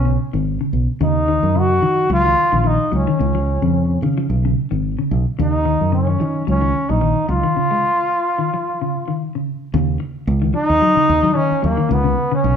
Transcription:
0.00 0.15 B1 medium
0.00 0.16 C#4 medium
0.05 0.26 C#3 medium
0.33 0.58 G#1 medium
0.33 0.53 D#3 medium
0.61 0.81 C#3 medium
0.73 0.86 B1 medium
1.01 1.38 D#2 medium
1.01 1.21 C#3 medium
1.01 1.60 D#4 medium
1.28 1.48 D#3 medium
1.43 1.78 F#2 medium
1.55 1.66 C#3 medium
1.55 2.12 F#4 loud
1.82 2.07 D#3 medium
1.82 2.03 F3 medium
2.10 2.34 C#2 medium
2.10 2.21 F#3 medium
2.10 2.68 F4 loud
2.26 2.45 D#3 medium
2.52 2.76 A#1 medium
2.52 2.61 D#3 medium
2.64 2.84 D#3 medium
2.64 2.93 D#4 medium
2.92 3.06 C#2 medium
2.92 3.03 F#3 medium
2.92 3.99 C#4 medium
3.07 3.16 D#3 medium
3.19 3.57 C#2 medium
3.19 3.30 C#3 medium
3.35 3.55 F3 medium
3.62 3.97 F2 medium
3.62 3.82 C#3 medium
4.02 4.26 C#3 medium
4.02 4.13 D#3 medium
4.18 4.37 F3 medium
4.30 4.53 B1 medium
4.45 4.64 C#3 medium
4.71 4.95 G#1 medium
4.71 4.91 D#3 medium
4.99 5.18 C#3 medium
5.11 5.24 B1 medium
5.39 5.76 D#2 loud
5.39 5.58 C#3 medium
5.39 5.91 D#4 medium
5.65 5.85 D#3 medium
5.81 6.15 F#2 medium
5.92 6.03 C#3 medium
5.92 6.44 C#4 medium
6.07 6.16 D#3 medium
6.20 6.44 D#3 medium
6.20 6.40 F3 medium
6.47 6.71 C#2 medium
6.47 6.58 F#3 medium
6.47 6.91 C#4 medium
6.62 6.81 D#3 medium
6.89 7.13 A#1 medium
6.89 6.98 F#3 medium
6.89 7.29 D#4 medium
7.01 7.21 D#3 medium
7.29 7.42 C#2 medium
7.29 7.39 F#3 medium
7.29 9.15 F4 loud
7.43 7.52 D#3 medium
7.56 7.67 C#3 medium
7.71 7.91 G#3 medium
8.38 8.49 D#3 medium
8.54 8.73 F3 medium
8.81 9.00 C#3 medium
9.08 9.27 D#3 medium
9.35 9.54 C#3 medium
9.74 9.97 D#2 loud
9.74 9.93 C#3 medium
10.00 muted clean electric guitar stroke medium
10.27 10.51 C#2 loud
10.27 muted clean electric guitar stroke medium
10.42 10.51 D#3 medium
10.54 10.74 F3 medium
10.54 11.37 D#4 loud
10.70 10.80 D#2 medium
10.82 10.92 F#3 medium
10.96 11.16 C#3 medium
10.96 muted fingered electric bass stroke soft
11.09 11.22 D#2 loud
11.23 11.47 D#3 medium
11.23 11.32 F#3 medium
11.35 11.55 D#3 medium
11.35 11.62 C#4 loud
11.52 muted fingered electric bass stroke soft
11.62 11.76 D#2 loud
11.62 11.73 F#3 medium
11.62 11.94 A#3 medium
11.77 11.86 D#3 medium
11.89 12.14 C#2 loud
11.89 12.00 C#3 medium
11.89 12.33 B3 medium
12.04 12.24 C#3 medium
12.32 12.51 C#3 medium
12.32 12.56 C#4 loud
12.44 12.56 B1 medium

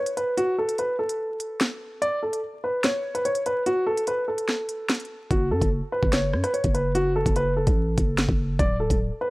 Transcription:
0.00 0.13 C#5 medium
0.06 closed hi-hat medium
0.17 0.33 B4 medium
0.17 closed hi-hat medium
0.37 0.54 F#4 loud
0.37 closed hi-hat medium
0.58 0.75 A4 medium
0.69 closed hi-hat medium
0.78 0.95 B4 medium
0.78 closed hi-hat medium
0.99 1.98 A4 medium
1.09 closed hi-hat medium
1.40 closed hi-hat medium
1.61 snare loud
1.61 closed hi-hat medium
2.02 2.18 D5 medium
2.02 closed hi-hat medium
2.23 2.39 A4 medium
2.33 closed hi-hat medium
2.64 2.80 B4 medium
2.84 3.13 C#5 medium
2.84 snare loud
2.84 closed hi-hat medium
3.15 3.23 B4 medium
3.15 closed hi-hat medium
3.25 3.42 C#5 medium
3.25 closed hi-hat medium
3.35 closed hi-hat medium
3.46 3.62 B4 medium
3.46 closed hi-hat medium
3.66 3.83 F#4 loud
3.66 closed hi-hat medium
3.86 4.03 A4 medium
3.97 closed hi-hat medium
4.07 4.24 B4 medium
4.07 closed hi-hat medium
4.28 5.27 A4 medium
4.38 closed hi-hat medium
4.49 snare medium
4.69 closed hi-hat medium
4.90 snare loud
4.90 closed hi-hat medium
4.95 closed hi-hat medium
5.00 closed hi-hat soft
5.05 closed hi-hat soft
5.31 5.53 F#1 loud
5.31 5.47 F#4 medium
5.31 kick loud
5.31 closed hi-hat medium
5.51 5.61 F#2 medium
5.51 5.68 A4 medium
5.61 5.81 F#1 loud
5.61 kick medium
5.61 closed hi-hat medium
5.92 6.09 B4 medium
6.03 6.35 F#1 loud
6.03 kick loud
6.13 6.42 C#5 medium
6.13 snare loud
6.13 closed hi-hat medium
6.33 6.43 F#2 loud
6.33 cross-stick medium
6.44 6.52 B4 medium
6.44 cross-stick medium
6.44 closed hi-hat medium
6.54 6.70 C#5 medium
6.54 closed hi-hat medium
6.64 7.23 F#1 loud
6.64 kick medium
6.64 closed hi-hat medium
6.74 6.91 B4 medium
6.74 closed hi-hat medium
6.95 7.11 F#4 loud
6.95 closed hi-hat medium
7.16 7.32 A4 medium
7.26 7.65 F#1 loud
7.26 kick loud
7.26 closed hi-hat medium
7.36 7.53 B4 medium
7.36 closed hi-hat medium
7.57 8.55 A4 medium
7.67 7.97 A1 loud
7.67 kick loud
7.67 closed hi-hat medium
7.98 8.27 F#1 loud
7.98 kick medium
7.98 closed hi-hat medium
8.18 snare loud
8.18 closed hi-hat medium
8.29 8.58 F#1 loud
8.29 kick loud
8.59 8.89 D1 loud
8.59 8.76 D5 medium
8.59 kick loud
8.59 closed hi-hat medium
8.80 8.96 A4 medium
8.90 9.10 D1 loud
8.90 kick loud
8.90 closed hi-hat medium
9.21 9.30 B4 medium

